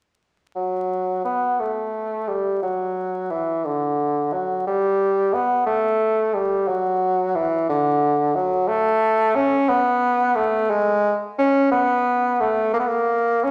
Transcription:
0.56 1.21 F#3 medium
1.25 1.61 B3 medium
1.60 2.30 A3 medium
2.28 2.62 G3 medium
2.63 3.32 F#3 medium
3.30 3.67 E3 medium
3.65 4.34 D3 medium
4.32 4.66 F#3 medium
4.67 5.35 G3 medium
5.33 5.66 B3 medium
5.67 6.36 A3 medium
6.34 6.70 G3 medium
6.68 7.37 F#3 medium
7.35 7.69 E3 medium
7.69 8.37 D3 medium
8.35 8.70 F#3 medium
8.68 9.37 A3 loud
9.35 9.70 C#4 loud
9.69 10.37 B3 medium
10.35 10.72 A3 medium
10.70 11.21 G#3 loud
11.38 11.71 C#4 loud
11.72 12.42 B3 loud
12.40 12.73 A3 loud
12.74 12.81 A#3 loud
12.80 12.89 B3 medium
12.87 13.45 A#3 loud
13.44 13.51 C#4 medium

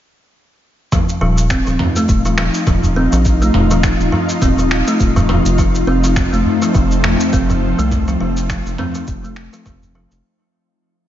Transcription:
0.92 1.20 F3 medium
0.92 kick medium
0.92 mid tom medium
0.92 shaker medium
1.09 shaker soft
1.21 1.62 D#1 loud
1.21 1.37 F3 medium
1.21 10.24 F4 medium
1.32 10.24 D#4 medium
1.38 shaker medium
1.50 1.66 C4 medium
1.50 finger snap medium
1.50 kick loud
1.50 shaker soft
1.67 1.77 D#1 medium
1.67 1.79 F3 medium
1.67 shaker soft
1.79 mid tom medium
1.79 udu medium
1.96 2.24 A3 medium
1.96 shaker medium
2.09 2.49 D#1 medium
2.09 kick loud
2.09 shaker medium
2.25 2.37 F3 medium
2.25 shaker soft
2.38 2.66 F3 loud
2.38 finger snap medium
2.54 shaker medium
2.67 3.08 D#1 medium
2.67 2.83 F3 medium
2.67 kick loud
2.67 mid tom medium
2.67 shaker medium
2.83 udu medium
2.83 shaker soft
2.96 3.12 C4 medium
3.12 3.50 A#1 medium
3.12 3.25 F3 medium
3.12 shaker medium
3.25 kick loud
3.25 shaker medium
3.42 3.69 A3 medium
3.42 shaker soft
3.54 3.95 D#1 loud
3.54 mid tom medium
3.71 3.82 F3 medium
3.71 shaker medium
3.83 4.11 F3 loud
3.83 finger snap medium
3.83 kick loud
3.83 shaker soft
3.99 4.10 D#1 medium
3.99 shaker soft
4.12 4.28 F3 medium
4.12 udu medium
4.29 shaker medium
4.42 4.82 D#1 medium
4.42 4.57 C4 medium
4.42 kick loud
4.42 mid tom medium
4.42 shaker medium
4.58 4.70 F3 medium
4.58 shaker soft
4.71 finger snap medium
4.87 5.15 A3 medium
4.87 shaker medium
5.00 5.41 D#1 loud
5.00 kick loud
5.00 shaker medium
5.16 5.28 F3 loud
5.16 udu medium
5.16 shaker soft
5.29 5.57 F3 medium
5.29 mid tom medium
5.45 5.83 F1 medium
5.45 shaker medium
5.57 10.24 F3 loud
5.57 5.74 F3 loud
5.57 kick medium
5.57 shaker medium
5.62 10.24 A3 medium
5.75 shaker soft
5.81 10.24 C4 medium
5.87 6.28 F1 medium
5.87 6.03 C4 medium
6.04 6.16 F3 medium
6.04 shaker medium
6.16 finger snap medium
6.16 kick loud
6.16 mid tom medium
6.16 shaker soft
6.33 6.43 F1 medium
6.33 6.60 A3 medium
6.33 shaker soft
6.45 udu medium
6.62 6.73 F3 medium
6.62 shaker medium
6.74 7.15 F1 medium
6.74 7.02 F3 medium
6.74 kick loud
6.74 shaker medium
6.91 shaker soft
7.04 7.20 F3 medium
7.04 finger snap medium
7.04 mid tom medium
7.20 shaker medium
7.33 7.74 F1 loud
7.33 7.49 C4 loud
7.33 kick loud
7.33 shaker medium
7.50 7.62 F3 medium
7.50 udu medium
7.50 shaker soft
7.78 8.16 C2 medium
7.78 8.06 A3 medium
7.78 shaker medium
7.91 kick loud
7.91 mid tom medium
7.91 shaker medium
8.08 8.19 F3 loud
8.08 shaker soft
8.20 8.61 F1 loud
8.20 8.48 F3 medium
8.37 shaker medium
8.50 8.65 F3 loud
8.50 finger snap medium
8.50 kick loud
8.50 shaker medium
8.66 8.76 F1 medium
8.66 shaker soft
8.78 8.94 C4 loud
8.78 mid tom medium
8.78 udu medium
8.95 9.07 F3 medium
8.95 shaker medium
9.07 9.48 F1 medium
9.07 kick loud
9.07 shaker medium
9.24 9.52 A3 medium
9.24 shaker soft
9.36 finger snap medium
9.53 9.65 F3 medium
9.53 shaker medium
9.66 10.07 F1 medium
9.66 9.94 F3 medium
9.66 kick loud
9.66 mid tom medium
9.66 shaker medium
9.82 udu medium
9.82 shaker soft
9.95 10.11 F3 medium
10.11 10.22 F1 medium
10.11 shaker medium

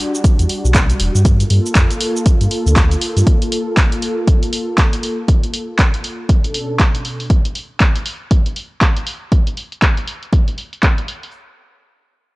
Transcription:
0.00 1.21 G3 medium
0.00 1.21 D4 medium
0.00 1.21 F#4 medium
0.15 shaker medium
0.24 kick loud
0.24 closed hi-hat medium
0.24 shaker soft
0.39 0.45 E2 medium
0.39 closed hi-hat soft
0.39 shaker soft
0.49 open hi-hat loud
0.64 0.93 B1 loud
0.64 shaker medium
0.75 kick loud
0.75 clap loud
0.75 closed hi-hat medium
0.75 shaker medium
0.90 closed hi-hat medium
0.90 shaker soft
1.00 1.09 E1 loud
1.00 open hi-hat loud
1.15 1.44 G2 loud
1.15 shaker medium
1.25 6.25 A#3 medium
1.25 6.25 F4 medium
1.25 6.25 A4 medium
1.25 kick loud
1.25 closed hi-hat medium
1.25 shaker medium
1.40 closed hi-hat soft
1.40 shaker soft
1.50 1.59 G2 loud
1.50 open hi-hat loud
1.66 shaker medium
1.75 1.85 F2 medium
1.75 kick loud
1.75 clap loud
1.75 closed hi-hat medium
1.75 shaker soft
1.91 closed hi-hat soft
1.91 shaker soft
2.01 open hi-hat loud
2.16 shaker medium
2.26 kick loud
2.26 closed hi-hat medium
2.26 shaker medium
2.41 2.47 G2 medium
2.41 closed hi-hat soft
2.41 shaker soft
2.51 open hi-hat loud
2.66 2.95 D2 loud
2.66 shaker medium
2.76 kick loud
2.76 clap loud
2.76 closed hi-hat medium
2.76 shaker medium
2.91 closed hi-hat soft
2.91 shaker soft
3.01 open hi-hat loud
3.16 3.23 G2 medium
3.16 open hi-hat medium
3.16 shaker medium
3.27 kick loud
3.27 closed hi-hat medium
3.42 closed hi-hat soft
3.52 open hi-hat loud
3.77 kick loud
3.77 clap loud
3.77 closed hi-hat medium
3.92 closed hi-hat soft
4.02 open hi-hat loud
4.27 kick loud
4.27 closed hi-hat medium
4.43 closed hi-hat soft
4.53 open hi-hat loud
4.78 kick loud
4.78 clap loud
4.78 closed hi-hat medium
4.93 closed hi-hat medium
5.03 open hi-hat loud
5.28 kick loud
5.28 closed hi-hat medium
5.43 closed hi-hat soft
5.54 open hi-hat loud
5.79 kick loud
5.79 clap loud
5.79 closed hi-hat medium
5.94 closed hi-hat soft
6.04 open hi-hat medium
6.29 7.29 B2 medium
6.29 7.29 C#4 medium
6.29 7.29 D4 medium
6.29 7.29 A4 medium
6.29 kick loud
6.29 closed hi-hat medium
6.44 closed hi-hat medium
6.54 open hi-hat loud
6.80 kick loud
6.80 clap loud
6.80 closed hi-hat medium
6.95 closed hi-hat soft
7.05 open hi-hat medium
7.20 open hi-hat medium
7.30 kick loud
7.30 closed hi-hat medium
7.45 closed hi-hat soft
7.55 open hi-hat medium
7.80 kick loud
7.80 clap loud
7.80 closed hi-hat medium
7.96 closed hi-hat medium
8.06 open hi-hat medium
8.31 kick loud
8.31 closed hi-hat medium
8.46 closed hi-hat medium
8.56 open hi-hat medium
8.81 kick loud
8.81 clap loud
8.81 closed hi-hat medium
8.97 closed hi-hat medium
9.07 open hi-hat medium
9.32 kick loud
9.32 closed hi-hat medium
9.47 closed hi-hat soft
9.57 open hi-hat medium
9.72 closed hi-hat soft
9.82 kick loud
9.82 clap loud
9.82 closed hi-hat medium
9.97 closed hi-hat medium
10.08 open hi-hat medium
10.23 closed hi-hat soft
10.33 kick loud
10.33 closed hi-hat medium
10.48 closed hi-hat medium
10.58 open hi-hat medium
10.73 closed hi-hat soft
10.83 kick loud
10.83 clap loud
10.83 closed hi-hat medium
10.98 closed hi-hat medium
11.08 open hi-hat medium
11.23 open hi-hat medium

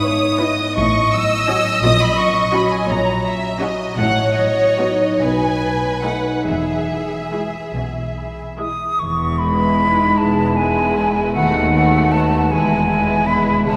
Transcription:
0.00 0.56 G#1 medium
0.00 0.56 G#2 medium
0.00 0.80 G#2 soft
0.00 0.80 B3 soft
0.00 0.39 B4 soft
0.00 0.40 C#5 medium
0.00 2.87 E5 soft
0.00 0.74 D#6 medium
0.40 0.67 B3 medium
0.40 0.67 E4 medium
0.40 4.00 E4 soft
0.40 0.80 B4 soft
0.40 2.89 D#5 medium
0.76 1.63 A1 medium
0.76 1.86 A2 medium
0.76 1.64 A2 medium
0.76 1.12 C#6 medium
1.12 2.17 F#3 soft
1.12 1.83 E6 medium
1.48 4.00 C#4 soft
1.48 1.74 C#4 medium
1.48 1.74 F#4 medium
1.48 2.52 C#5 soft
1.83 2.69 A#1 medium
1.83 4.00 A#2 medium
1.83 2.69 A#2 medium
1.83 2.00 D#6 medium
2.01 2.18 B5 medium
2.18 4.36 F#3 soft
2.18 2.53 C#6 medium
2.53 2.80 C#4 medium
2.53 2.80 F#4 medium
2.53 4.01 C#5 soft
2.53 2.71 B5 medium
2.72 2.89 G#5 medium
2.89 3.77 A#1 medium
2.89 3.77 A#2 medium
2.89 3.60 F#4 soft
2.89 3.24 C#5 medium
2.89 3.25 A#5 medium
3.25 4.01 E5 soft
3.25 3.60 E5 medium
3.60 3.88 C#4 medium
3.60 6.51 F#4 soft
3.60 3.88 F#4 medium
3.60 3.97 D#5 medium
3.97 4.99 A1 medium
3.97 4.98 A2 medium
3.97 5.25 A2 soft
3.97 5.21 C#5 medium
3.97 4.34 F#5 medium
4.37 6.51 F#3 soft
4.37 5.22 D#5 medium
4.79 5.11 B3 soft
4.79 6.03 D#4 soft
4.79 5.11 F#4 medium
4.79 6.03 B4 soft
5.21 6.24 B1 medium
5.21 6.51 B2 soft
5.21 6.24 B2 soft
5.21 6.47 B4 medium
5.21 6.04 G#5 medium
5.63 6.51 A3 soft
6.04 6.36 A3 soft
6.04 6.51 D#4 soft
6.04 6.36 D#4 soft
6.04 9.95 B4 soft
6.04 6.47 F#5 medium
6.47 7.53 E1 soft
6.47 7.53 E2 soft
6.47 8.99 E3 soft
6.47 8.35 G#4 soft
6.47 8.55 E5 medium
6.91 9.39 E4 soft
7.33 7.65 G#3 soft
7.33 7.65 E4 soft
7.33 10.95 G#4 soft
7.75 8.78 B1 soft
7.75 8.78 B2 soft
7.75 8.59 E5 soft
8.17 12.07 B5 soft
8.58 8.90 G#3 soft
8.58 8.90 E4 soft
8.58 11.38 E5 soft
8.58 9.01 D#6 medium
8.99 10.04 E1 soft
8.99 10.04 E2 soft
8.99 11.38 E3 soft
8.99 11.31 G#3 medium
8.99 13.62 B3 soft
8.99 9.40 C#6 medium
9.38 10.55 G#3 soft
9.38 10.55 E4 soft
9.38 10.18 E4 soft
9.38 10.55 B4 soft
9.38 10.19 B5 medium
9.80 10.46 D#4 soft
10.18 11.21 E1 medium
10.18 11.21 E2 soft
10.18 11.38 E4 soft
10.18 10.58 A5 medium
10.56 11.33 G#3 soft
10.56 11.34 E4 soft
10.56 12.12 B4 soft
10.56 11.33 B4 soft
10.56 11.33 G#5 medium
10.96 11.38 G#4 soft
11.33 12.37 D#2 soft
11.33 12.38 D#2 medium
11.33 12.54 D#3 soft
11.33 12.46 A3 medium
11.33 11.73 A3 soft
11.33 11.73 F#4 soft
11.33 11.72 B4 soft
11.33 12.13 F#5 medium
11.73 12.54 A3 soft
11.73 12.50 A3 soft
11.73 12.50 F#4 soft
11.73 12.49 B4 soft
12.12 12.54 F#4 soft
12.12 13.26 B4 soft
12.12 12.53 A5 medium
12.51 13.52 E1 soft
12.51 13.53 E2 soft
12.51 13.69 E3 soft
12.51 12.88 G#3 soft
12.51 13.77 G#3 medium
12.51 12.88 E4 soft
12.51 12.88 B4 soft
12.51 13.28 G#5 medium
12.89 13.64 G#3 soft
12.89 13.26 E4 soft
12.89 13.64 E4 soft
12.89 13.65 B4 soft
13.26 13.77 E4 soft
13.26 13.69 B4 soft
13.26 13.65 B5 medium
13.65 13.77 C#2 medium
13.65 13.77 C#3 soft
13.65 13.77 G#3 soft
13.65 13.77 E4 soft
13.65 13.77 E4 medium
13.65 13.77 C#5 soft
13.65 13.77 A5 medium

